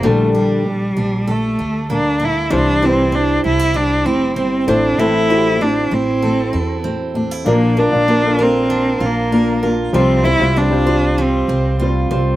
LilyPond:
<<
  \new Staff \with { instrumentName = "Upright piano" } { \time 4/4 \key c \mixolydian \tempo 4 = 97 r1 | <g c' e' c''>16 r16 <g c' e' b' c''>4~ <g c' e' b' c''>16 r4. r16 <a c' e' c''>8~ | <a c' e' c''>16 r16 <a c' e' fis' g'>4~ <a c' e' fis' g'>16 r2 r16 | <bes d' f' d''>8 r16 <bes d' f' d''>16 r16 <bes d' f' a'>4~ <bes d' f' a'>16 r4. |
<g c' f' c''>8 r16 <g c' f' c''>16 r16 <g c' f' c''>4~ <g c' f' c''>16 r4. | }
  \new Staff \with { instrumentName = "Steel-string acoustic guitar" } { \time 4/4 \key c \mixolydian g8 d'4 d'8 a'8 d'8 bes8 d'8 | g8 e'8 c'8 d'16 e'16 g'8 e'8 c'8 c'8 | c'8 e'8 c'8 e'8 a'8 e'8 c'8 d'16 e'16 | d'8 d'8 f'8 bes'8 d'8 f'8 bes'8 f'8 |
g8 g8 c'8 f'8 g8 c'8 f'8 c'8 | }
  \new Staff \with { instrumentName = "Cello" } { \time 4/4 \key c \mixolydian a8 g4. a4 d'8 e'8 | d'8 c'8 d'8 e'8 d'8 c'8 c'8 d'8 | e'4 d'8 c'4. r4 | bes8 d'4 c'4 bes4 r8 |
c'8 e'8 d'4 c'4 r4 | }
  \new Staff \with { instrumentName = "Nylon-string guitar" } { \time 4/4 \key c \mixolydian <bes, d g d' g' a'>4 <bes, d g>8 <bes, d g>8 <bes, d g>8 r8 <bes, d g>8 <bes, d g>8 | <c e g c' e' c''>4 <c e>8 <c e g>8 <c e g>8 r8 <c e g>8 <a, e a>8 | <a, e a c' e' a'>4 <a, e a>8 <a, e a>8 <a, e a>8 r8 <a, e a>8 <a, e a>8 | <bes, f bes d' f' bes'>8 <bes d' f' bes'>8 <bes d' f' bes'>8 <bes d' f' bes'>4. <bes d' f' bes'>8 <bes d' f' bes'>8 |
<c f g c' f' c''>8 <g c' c''>8 <g c' f' c''>8 <g c' f' c''>4. <g c' f' c''>8 <g c' f' c''>8 | }
  \new Staff \with { instrumentName = "Upright bass" } { \clef bass \time 4/4 \key c \mixolydian bes,,4. bes,,4 d,4. | c,4. c,4 f,,8 g,,8 a,,8 | a,,4. a,,4 e,4. | bes,,8. bes,,4.~ bes,,16 bes,,4. |
c,8. c,4.~ c,16 c,4 c,8 | }
>>